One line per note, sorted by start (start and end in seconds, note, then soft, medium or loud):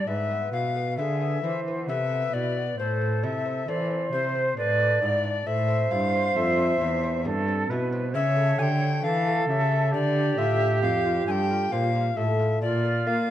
0.07 0.52 G#2 medium
0.07 0.49 G#2 medium
0.07 0.96 B4 medium
0.07 0.52 E5 medium
0.30 0.66 B3 soft
0.52 1.00 B2 medium
0.52 0.94 B2 soft
0.52 0.89 E4 soft
0.52 0.97 F5 medium
0.76 1.12 B3 soft
0.98 1.43 D3 medium
0.98 1.40 D3 medium
0.98 1.42 G#4 medium
0.98 1.35 B4 medium
0.98 1.60 E5 medium
1.21 1.57 B3 soft
1.43 1.90 E3 medium
1.43 1.85 E3 medium
1.43 1.80 E4 soft
1.43 1.90 C5 medium
1.68 2.03 B3 soft
1.88 2.33 C3 medium
1.88 2.30 C3 medium
1.88 2.12 A3 soft
1.88 2.78 B4 medium
1.88 2.35 E5 medium
2.12 2.48 B3 soft
2.33 2.77 B2 medium
2.33 2.75 B2 medium
2.33 2.70 E4 soft
2.33 2.78 D5 medium
2.57 2.79 B3 soft
2.78 3.25 A2 medium
2.78 3.20 A2 medium
2.78 3.67 A4 medium
2.78 3.25 C5 medium
3.01 3.37 C4 medium
3.23 3.64 C3 medium
3.23 3.68 C3 medium
3.23 3.59 E4 medium
3.23 3.70 E5 medium
3.45 3.81 C4 soft
3.67 4.09 E3 medium
3.67 4.12 E3 medium
3.67 4.04 A4 medium
3.67 4.55 C5 medium
3.67 4.12 D5 medium
3.91 4.26 C4 medium
4.13 4.53 C3 medium
4.13 4.57 C3 medium
4.13 4.48 E4 soft
4.13 4.56 C5 medium
4.35 4.57 C4 soft
4.57 4.98 A2 medium
4.57 5.01 A2 medium
4.57 5.01 B4 loud
4.57 5.18 D5 loud
4.80 5.15 D4 soft
5.02 5.45 G#2 medium
5.02 5.42 G#2 medium
5.02 5.37 E4 soft
5.02 5.48 D5 loud
5.24 5.46 D4 soft
5.46 5.90 A2 medium
5.46 5.87 A2 medium
5.46 7.21 C5 medium
5.46 5.92 E5 loud
5.68 6.04 C4 medium
5.91 6.32 G2 medium
5.91 6.35 G2 medium
5.91 6.27 E4 medium
5.91 6.38 F5 loud
6.14 6.49 C4 medium
6.36 6.80 F2 medium
6.36 6.77 F2 medium
6.36 6.72 A4 medium
6.36 7.26 E5 loud
6.58 6.94 C4 medium
6.80 7.27 E2 medium
6.80 7.22 E2 medium
6.80 7.17 E4 soft
7.04 7.39 C4 soft
7.25 7.66 G2 medium
7.25 7.69 G2 medium
7.25 7.48 B3 soft
7.25 7.71 A4 medium
7.48 7.84 C4 medium
7.70 8.16 B2 medium
7.70 8.11 B2 medium
7.70 8.06 E4 medium
7.70 8.15 B4 medium
7.93 8.15 C4 medium
8.14 8.55 C#3 medium
8.14 8.58 C#3 medium
8.14 9.03 C#5 medium
8.14 8.60 E5 loud
8.36 8.72 A3 medium
8.59 9.03 D3 medium
8.59 9.00 D3 medium
8.59 8.95 G4 medium
8.59 9.05 G5 loud
8.59 8.63 G#5 loud
8.82 9.18 A3 soft
9.03 9.48 E3 medium
9.03 9.45 E3 medium
9.03 9.93 A4 medium
9.03 9.40 A4 medium
9.03 9.48 F5 loud
9.28 9.63 A3 medium
9.48 9.95 C#3 medium
9.48 9.90 C#3 medium
9.48 9.85 G4 medium
9.48 9.92 E5 medium
9.72 9.94 A3 medium
9.92 10.37 D3 medium
9.92 10.34 D3 medium
9.92 12.34 G4 loud
9.92 10.40 D5 loud
10.16 10.38 D4 medium
10.37 10.84 A2 medium
10.37 10.79 A2 medium
10.37 10.74 F4 medium
10.37 10.82 E5 loud
10.61 10.83 D4 soft
10.82 11.26 F2 medium
10.82 11.24 F2 medium
10.82 11.26 F5 loud
11.05 11.41 F4 medium
11.27 11.71 G2 medium
11.27 11.69 G2 medium
11.27 11.64 A4 medium
11.27 11.32 G#5 medium
11.31 11.74 G5 loud
11.51 11.87 F4 medium
11.72 12.17 A#2 medium
11.72 12.14 A#2 medium
11.72 12.09 C5 medium
11.72 12.18 F5 loud
11.95 12.31 F4 medium
12.17 12.59 A2 medium
12.17 12.62 A2 medium
12.17 12.53 A4 medium
12.17 12.61 E5 loud
12.39 12.62 F4 medium
12.62 13.04 A#2 medium
12.62 13.07 A#2 medium
12.62 13.30 F4 medium
12.62 13.08 D5 loud
12.85 13.06 A#3 medium
13.07 13.29 A#3 medium
13.07 13.30 A#3 medium
13.07 13.30 F4 medium
13.07 13.30 F5 loud